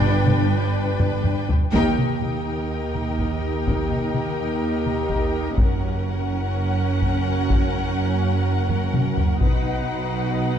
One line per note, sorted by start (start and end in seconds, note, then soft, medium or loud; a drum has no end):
0.00 1.53 G1 medium
0.00 1.53 G2 medium
0.00 1.49 D3 medium
0.00 1.48 G3 loud
0.00 1.44 B3 loud
0.00 1.45 B3 medium
0.00 1.49 D4 medium
0.00 1.48 G4 loud
0.00 1.44 B4 loud
0.00 1.44 B4 medium
0.00 1.49 B4 medium
0.00 1.48 D5 loud
0.00 1.49 G5 medium
0.00 taiko mid medium
0.26 taiko mid medium
1.00 taiko low-mid medium
1.24 taiko low-mid medium
1.49 taiko low medium
1.72 5.54 D#2 medium
1.72 5.54 A#3 medium
1.72 5.53 D#4 medium
1.72 5.54 D#4 medium
1.72 5.53 G4 medium
1.72 5.53 A#4 medium
1.72 5.54 A#4 medium
1.72 5.53 D#5 medium
1.72 5.54 G5 medium
1.72 taiko medium
1.99 taiko mid soft
2.22 taiko mid soft
2.95 taiko mid soft
3.19 taiko medium
3.67 taiko medium
3.91 taiko mid soft
4.14 taiko mid medium
4.86 taiko mid soft
5.10 taiko medium
5.57 9.38 F#1 medium
5.57 9.37 F#2 medium
5.57 9.24 A#3 medium
5.57 9.41 C#4 medium
5.57 9.23 C#4 medium
5.57 9.24 F#4 medium
5.57 9.23 F#4 medium
5.57 9.23 A#4 medium
5.57 9.37 A#4 medium
5.57 9.23 F#5 medium
5.57 9.39 F#5 medium
5.57 taiko medium
7.02 taiko medium
7.50 taiko medium
8.70 taiko low-mid medium
8.94 taiko mid medium
9.18 taiko low medium
9.40 10.59 B1 medium
9.40 10.59 B2 medium
9.40 10.59 B3 medium
9.40 10.59 D#4 medium
9.40 10.59 F#4 medium
9.40 10.59 B4 medium
9.40 10.59 F#5 medium
9.40 taiko medium